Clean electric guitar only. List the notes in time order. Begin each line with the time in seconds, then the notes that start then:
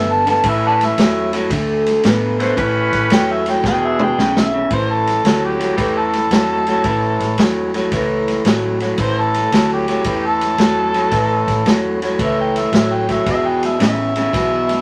Already playing: D3 B3
0.27 D3 B3
0.45 A2 E3
0.98 A2 F#3
1.33 A2 F#3
1.52 D3 A3
2.05 D3 B3
2.40 D3 B3
2.57 A2 E3
3.11 A2 F#3
3.48 A2 F#3
3.66 E2 B2
4.18 E2 C#3
4.54 E2 C#3
4.72 A2 E3
5.25 A2 F#3
5.59 A2 F#3
5.77 A2 E3
6.31 A2 F#3
6.68 A2 F#3
6.86 A2 E3
7.38 A2 F#3
7.74 A2 F#3
7.93 A2 E3
8.46 A2 F#3
8.81 A2 F#3
8.99 A2 E3
9.53 A2 F#3
9.88 A2 F#3
10.05 A2 E3
10.59 A2 F#3
10.94 A2 F#3
11.12 A2 E3
11.66 A2 F#3
12.03 A2 F#3
12.20 A2 E3
12.73 A2 F#3
13.09 A2 F#3
13.26 E2 B2
13.80 E2 C#3
14.17 E2 C#3
14.33 E2 B2